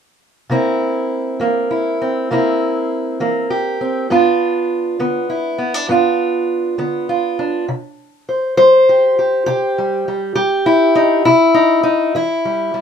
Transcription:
0.50 C3 A#3 C4 E4
1.40 E3 A#3
1.71 E4
2.02 C4
2.31 C3 A#3 C4 E4
3.20 E3 A#3
3.50 G4
3.81 C4
4.10 G2 B3 D4 F4
4.99 D3 B3
5.30 E4
5.58 B3
5.74 D4
5.88 G2 B3 D4 F4
6.78 D3 B3
7.09 F4
7.39 D4
7.68 C3
8.29 C5
8.57 G3 C5
8.89 G4
9.19 G4
9.46 C3 G4
9.78 G3
10.08 G3
10.35 G3 G4
10.66 E4
10.95 D#4
11.25 C3 E4
11.54 D#4
11.83 D#4
12.15 E3 E4
12.45 G3
12.74 G3

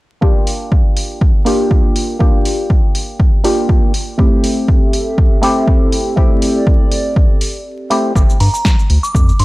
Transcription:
0.21 A#3 D4 F4 G4, kick
0.47 open hi-hat
0.72 kick
0.97 open hi-hat
1.21 kick
1.45 A#3 D4 F4 G4, open hi-hat
1.71 kick
1.96 open hi-hat
2.19 A#3 D4 F4 G4, kick
2.45 open hi-hat
2.70 kick
2.95 open hi-hat
3.20 kick
3.44 A#3 D4 F4 G4, open hi-hat
3.69 kick
3.94 open hi-hat
4.18 A3 C4 E4 G4 A4 E5, kick
4.44 open hi-hat
4.68 kick
4.93 open hi-hat
5.18 kick
5.42 A3 C4 E4 G4, open hi-hat
5.68 kick
5.92 open hi-hat
6.16 A3 C4 E4 G4 D5, kick
6.42 open hi-hat
6.67 kick
6.92 open hi-hat
7.16 kick
7.41 open hi-hat
7.90 A3 C4 E4 G4, open hi-hat
8.15 G1, kick, cabasa
8.30 cabasa
8.40 G2 A#5, open hi-hat
8.54 A#5, cabasa
8.65 kick, snare, cabasa
8.79 cabasa
8.90 D2, open hi-hat
9.03 D6, cabasa
9.15 F2, kick, cabasa
9.29 cabasa
9.39 G2 C6, open hi-hat

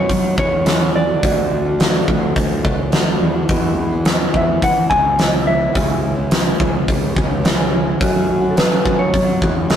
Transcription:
Already playing: C#5
0.09 F#3, kick, open hi-hat
0.36 E2 F#3 A3 C#4 F#4 C#5, kick
0.51 muted steel-string acoustic guitar stroke
0.64 F#2 C#3 F#3 A3 C#4 F#4, snare, open hi-hat
0.79 F#3 A3 C#4 F#4
0.94 F#3 A3 C#4 F#4 D5
1.07 F#3 A3 C#4 F#4
1.22 D2 D3 A3 D4 F#4, kick, open hi-hat
1.65 A3 D4 F#4
1.79 D3 A3 D4 F#4, snare, open hi-hat
2.07 D2 D3 A3 D4 F#4, kick
2.21 muted steel-string acoustic guitar stroke
2.36 D2, kick, open hi-hat
2.63 C#2 D3 A3 D4 F#4, kick
2.78 muted steel-string acoustic guitar stroke
2.91 D2 D3 A3 D4 F#4, snare, open hi-hat
3.05 A3 D4 F#4
3.19 E2 D3 A3 D4 F#4
3.34 A3 D4 F#4
3.48 E2 B2 E3 G#3 B3 E4, kick, open hi-hat
3.78 E2
3.91 E3 G#3 B3 E4
4.04 E2 B2 E3 G#3 B3 E4, snare, open hi-hat
4.33 E2 E3 G#3 B3 E4 E5, kick
4.47 muted steel-string acoustic guitar stroke
4.62 E3 F#5, kick, open hi-hat
4.89 C#2 E3 G#3 B3 E4 G#5, kick
5.04 muted steel-string acoustic guitar stroke
5.17 E2 B2 E3 G#3 B3 E4, snare, open hi-hat
5.31 E3 G#3 B3 E4
5.45 E3 G#3 B3 E4 E5
5.60 E3 G#3 B3 E4
5.73 C#2 C#3 E3 G#3 C#4 E4, kick, open hi-hat
6.16 G#3 C#4 E4
6.31 C#3 E3 G#3 C#4 E4, snare, open hi-hat
6.59 C#2 E3 G#3 C#4 E4, kick
6.74 muted steel-string acoustic guitar stroke
6.88 C#2, kick, open hi-hat
7.15 C#2 E3 G#3 C#4 E4, kick
7.29 muted steel-string acoustic guitar stroke
7.43 C#3 E3 G#3 C#4 E4, snare, open hi-hat
7.57 G#3 C#4 E4
7.72 E3 G#3 C#4 E4
7.85 G#3 C#4 E4
7.99 F#2 C#3 F#3 A3 C#4 F#4, kick, open hi-hat
8.30 F#2
8.41 F#3 A3 C#4 F#4
8.51 A4
8.55 F#2 C#3 F#3 A3 C#4 F#4 B4, snare, open hi-hat
8.84 F#2 F#3 A3 C#4 F#4, kick
8.98 C#5, muted steel-string acoustic guitar stroke
9.14 F#3, kick, open hi-hat
9.40 E2 F#3 A3 C#4 F#4, kick
9.55 muted steel-string acoustic guitar stroke
9.69 F#2 C#3 F#3 A3 C#4 F#4, snare, open hi-hat

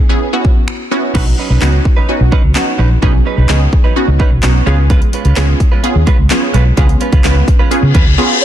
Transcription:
0.09 B3 C#4 E4 G#4
0.33 B3 C#4 E4 F#4
0.45 kick
0.68 finger snap
0.91 B3 C#4 E4 F#4
1.14 B1 F#3 B3 C#4 D#4 F#4 B4, kick, crash
1.26 muted clean electric guitar stroke
1.38 F#3 C#4 D#4 B4
1.50 B1 F#3 C#4 D#4 B4
1.61 C#2 F#3 B3 C#4 D#4 F#4 B4, snare, clap
1.73 muted clean electric guitar stroke
1.85 muted clean electric guitar stroke, kick
1.97 F#3 C#4 D#4 B4
2.08 B3 C#4 D#4 F#4, muted clean electric guitar stroke
2.20 B1, muted clean electric guitar stroke
2.32 F#3 C#4 D#4 B4, kick
2.43 C#2, muted clean electric guitar stroke
2.55 B3 C#4 D#4 F#4, snare, clap
2.67 muted clean electric guitar stroke
2.78 A#1 F#3 C#4 D#4 B4
2.90 muted clean electric guitar stroke
3.02 B1 F#3 B3 C#4 D#4 G#4 B4, kick
3.14 muted clean electric guitar stroke
3.25 F#3 C#4 D#4 B4
3.37 B1 F#3 C#4 D#4 B4
3.49 C#2 F#3 B3 C#4 D#4 G#4 B4, snare, clap
3.61 muted clean electric guitar stroke
3.72 muted clean electric guitar stroke, kick
3.84 F#3 C#4 D#4 B4
3.96 B3 C#4 D#4 F#4, muted clean electric guitar stroke
4.08 C#2, muted clean electric guitar stroke
4.19 F#3 C#4 D#4 B4, kick
4.31 B1, muted clean electric guitar stroke
4.43 B1 B3 C#4 D#4 F#4, snare, clap
4.55 muted clean electric guitar stroke
4.66 C#2 G#3 B3 C#4 F4 G#4 B4
4.78 muted clean electric guitar stroke
4.90 G#3 C#4 F4 B4, kick, closed hi-hat
5.02 muted clean electric guitar stroke, closed hi-hat
5.13 G#3 C#4 F4 B4, closed hi-hat
5.25 C#2 G#3 C#4 F4 B4, closed hi-hat
5.36 C#2 G#3 B3 C#4 F4 G#4 B4, snare, clap, closed hi-hat
5.48 muted clean electric guitar stroke
5.60 muted clean electric guitar stroke, kick, closed hi-hat
5.72 G#3 C#4 F4 B4
5.83 B3 C#4 F4 G#4, muted clean electric guitar stroke, closed hi-hat
5.95 D#2, muted clean electric guitar stroke
6.07 G#3 C#4 F4 B4, kick, closed hi-hat
6.19 C#2, muted clean electric guitar stroke
6.30 B3 C#4 F4 G#4, snare, clap, closed hi-hat
6.42 muted clean electric guitar stroke
6.54 B1 G#3 C#4 F4 B4, closed hi-hat
6.66 muted clean electric guitar stroke
6.77 C#2 G#3 B3 C#4 F4 G#4 B4, kick, closed hi-hat
6.89 muted clean electric guitar stroke, closed hi-hat
7.00 G#3 C#4 F4 B4, closed hi-hat
7.12 C#2 G#3 C#4 F4 B4, kick, closed hi-hat
7.24 C#2 G#3 B3 C#4 F4 B4, snare, clap, closed hi-hat
7.36 muted clean electric guitar stroke
7.48 muted clean electric guitar stroke, kick, closed hi-hat
7.59 G#3 C#4 F4 B4
7.71 B3 C#4 F4 G#4, muted clean electric guitar stroke, closed hi-hat, reverse cymbal
7.83 C#3, muted clean electric guitar stroke
7.94 D#2 G#3 C#4 F4 B4, kick, closed hi-hat
8.06 C#2, muted clean electric guitar stroke
8.18 B3 C#4 F4 G#4
8.42 C#5

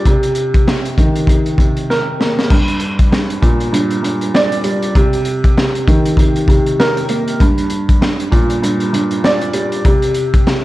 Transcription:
0.05 C3, kick, closed hi-hat
0.23 closed hi-hat
0.35 closed hi-hat
0.54 kick, closed hi-hat
0.68 C3, snare
0.85 closed hi-hat
0.98 D#3, kick, closed hi-hat
1.15 closed hi-hat
1.27 C3, kick, closed hi-hat
1.46 closed hi-hat
1.58 C3, kick, closed hi-hat
1.77 closed hi-hat
1.90 A#4, snare
2.20 A#3, snare
2.39 snare
2.50 G2, kick, crash
2.68 closed hi-hat
2.80 closed hi-hat
2.99 kick, closed hi-hat
3.12 G2, snare
3.30 closed hi-hat
3.42 A#2, kick, closed hi-hat
3.60 closed hi-hat
3.73 G2, closed hi-hat
3.91 closed hi-hat
4.03 G2, closed hi-hat
4.21 closed hi-hat
4.35 D5, snare
4.52 closed hi-hat
4.64 G3, closed hi-hat
4.83 closed hi-hat
4.95 C3, kick, closed hi-hat
5.13 closed hi-hat
5.25 closed hi-hat
5.44 kick, closed hi-hat
5.57 C3, snare
5.75 closed hi-hat
5.87 D#3, kick, closed hi-hat
6.05 closed hi-hat
6.17 C3, kick, closed hi-hat
6.36 closed hi-hat
6.48 C3, kick, closed hi-hat
6.66 closed hi-hat
6.80 A#4, snare
6.97 closed hi-hat
7.09 A#3, closed hi-hat
7.28 closed hi-hat
7.40 G2, kick, closed hi-hat
7.58 closed hi-hat
7.70 closed hi-hat
7.89 kick, closed hi-hat
8.01 G2, snare
8.20 closed hi-hat
8.31 A#2, kick, closed hi-hat
8.50 closed hi-hat
8.62 G2, closed hi-hat
8.80 closed hi-hat
8.93 G2, closed hi-hat
9.11 closed hi-hat
9.24 D5, snare
9.41 closed hi-hat
9.53 G3, closed hi-hat
9.72 closed hi-hat
9.85 C3, kick, closed hi-hat
10.02 closed hi-hat
10.14 closed hi-hat
10.34 kick, closed hi-hat
10.47 C3, snare

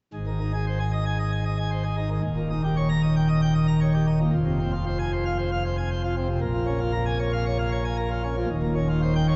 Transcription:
0.14 G#1 G#2
0.27 D#3
0.40 D#4
0.53 G#4
0.67 C5
0.80 G#5
0.93 D#5
1.06 G#5
1.19 D#5
1.32 G#5
1.46 D#5
1.58 G#5
1.71 C5
1.84 G#4
1.97 D#4
2.10 D#3
2.23 D#1 D#2
2.37 A#2
2.50 D#4
2.64 G4
2.77 C#5
2.89 A#5
3.03 D#5
3.16 G5
3.29 D#5
3.42 G5
3.55 D#5
3.68 A#5
3.81 C#5
3.94 G4
4.07 D#4
4.20 A#2
4.33 F1 F2
4.47 C3
4.60 C4
4.73 F4
4.86 C5
4.99 G#5
5.12 C5
5.25 F5
5.38 C5
5.52 F5
5.65 C5
5.78 G#5
5.91 C5
6.04 F4
6.17 C4
6.29 C3
6.41 A#1 A#2
6.54 F3
6.67 C#4
6.80 F4
6.93 A#4
7.06 G#5
7.19 C#5
7.33 F5
7.46 C#5
7.58 F5
7.72 C#5
7.85 G#5
7.97 A#4
8.11 F4
8.24 C#4
8.37 F3
8.49 D#1 D#2
8.63 A#2
8.76 C#4
8.89 F4
9.02 C5
9.15 G5
9.28 C#5

